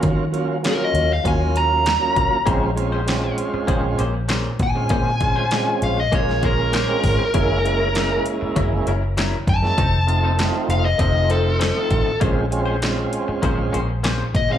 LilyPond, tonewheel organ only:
\new Staff \with { instrumentName = "Tonewheel organ" } { \time 4/4 \key bes \minor \tempo 4 = 98 <ges bes des' f'>16 r16 <ges bes des' f'>8 <ges bes des' f'>8. r16 <ges bes des' f'>4 r16 <ges bes des' f'>8 r16 | <aes c' des' f'>8 <aes c' des' f'>8 <aes c' des' f'>4. r4 r16 <aes c' des' f'>16~ | <aes c' des' f'>16 r16 <aes c' des' f'>8 <aes c' des' f'>8. r16 <aes bes des' f'>4 r16 <aes c' des' f'>8 r16 | <aes bes des' fes'>8 <aes bes des' fes'>8 <aes bes des' fes'>4. r4 r16 <aes bes des' fes'>16 |
r8 <a c' ees' f'>8 <a c' ees' f'>8. r16 <a c' ees' f'>4 r16 <a c' ees' f'>8 r16 | <aes c' des' f'>8 <aes c' des' f'>8 <aes c' des' f'>4. r4 r16 <aes c' des' f'>16 | }